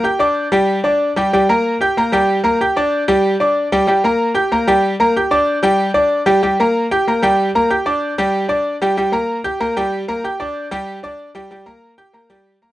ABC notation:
X:1
M:4/4
L:1/8
Q:1/4=188
K:Gdor
V:1 name="Grand piano"
[Ggg'] [Ddd']2 [G,Gg]2 [Ddd']2 [G,Gg] | [G,Gg] [B,Bb]2 [Ggg'] [B,Bb] [G,Gg]2 [B,Bb] | [Ggg'] [Ddd']2 [G,Gg]2 [Ddd']2 [G,Gg] | [G,Gg] [B,Bb]2 [Ggg'] [B,Bb] [G,Gg]2 [B,Bb] |
[Ggg'] [Ddd']2 [G,Gg]2 [Ddd']2 [G,Gg] | [G,Gg] [B,Bb]2 [Ggg'] [B,Bb] [G,Gg]2 [B,Bb] | [Ggg'] [Ddd']2 [G,Gg]2 [Ddd']2 [G,Gg] | [G,Gg] [B,Bb]2 [Ggg'] [B,Bb] [G,Gg]2 [B,Bb] |
[Ggg'] [Ddd']2 [G,Gg]2 [Ddd']2 [G,Gg] | [G,Gg] [B,Bb]2 [Ggg'] [B,Bb] [G,Gg]2 [B,Bb] |]